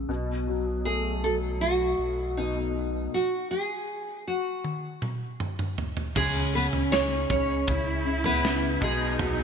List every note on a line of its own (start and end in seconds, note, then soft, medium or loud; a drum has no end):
0.00 0.11 C#3 soft
0.00 0.11 A3 soft
0.08 1.94 B1 loud
0.08 2.36 B2 medium
0.47 1.22 F#3 soft
0.85 2.33 A3 soft
0.85 1.24 G#4 medium
1.23 2.71 F#3 soft
1.23 1.34 A4 medium
1.61 2.39 F#4 medium
1.99 3.09 B1 medium
2.37 3.11 B2 soft
2.37 3.09 D#4 medium
3.14 3.50 F#4 medium
3.51 4.27 G#4 medium
4.27 4.99 F#4 medium
4.64 high tom soft
5.02 mid tom medium
5.40 mid tom medium
5.59 mid tom medium
5.78 floor tom medium
5.97 floor tom medium
6.16 6.69 C#2 loud
6.16 8.82 C#3 medium
6.16 6.53 C#3 medium
6.16 6.52 G#3 medium
6.16 7.64 C#4 medium
6.16 6.52 G#4 medium
6.16 kick medium
6.16 floor tom loud
6.16 crash medium
6.54 6.90 C#3 soft
6.54 6.66 B3 medium
6.54 6.65 B4 medium
6.73 7.26 C#2 medium
6.73 floor tom medium
6.92 7.29 C#3 medium
6.92 7.68 C#4 medium
6.92 7.28 C#4 medium
6.92 7.71 D#4 medium
6.92 8.90 G#4 medium
6.92 7.29 C#5 loud
6.92 snare loud
7.30 7.66 C#2 medium
7.30 7.67 C#3 medium
7.30 8.21 C#4 medium
7.30 8.25 C#5 loud
7.30 kick medium
7.30 floor tom medium
7.68 8.78 C#2 medium
7.68 8.04 C#3 medium
7.68 9.24 C#4 medium
7.68 8.82 E4 loud
7.68 kick medium
7.68 floor tom medium
8.05 8.41 C#3 medium
8.24 8.79 B3 medium
8.24 8.84 B4 loud
8.24 floor tom medium
8.43 8.80 C#3 medium
8.43 snare loud
8.81 9.17 B1 medium
8.81 9.43 B2 medium
8.81 9.19 B2 medium
8.81 9.43 G#3 medium
8.81 9.43 D#4 loud
8.81 9.43 G#4 medium
8.81 kick loud
9.19 9.43 B1 medium
9.19 9.43 B2 medium
9.19 9.43 F#3 medium
9.19 floor tom loud